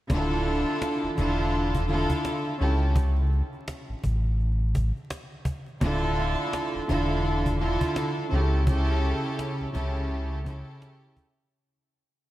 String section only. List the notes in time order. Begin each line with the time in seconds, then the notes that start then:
0.10 D3 D4 E4 F4 A4
1.16 D3 D4 E4 F4 A4
1.87 D3 D4 E4 F4 A4
2.59 C#3 C#4 E4 G4 A4
5.81 D3 D4 E4 F4 A4
6.88 D3 D4 E4 F4 A4
7.58 D3 D4 E4 F4 A4
8.31 C#3 C#4 E4 G4 A4
8.67 C#3 C#4 E4 G4 A4
9.72 C#3 C#4 E4 G4 A4
10.45 C#3 C#4 E4 G4 A4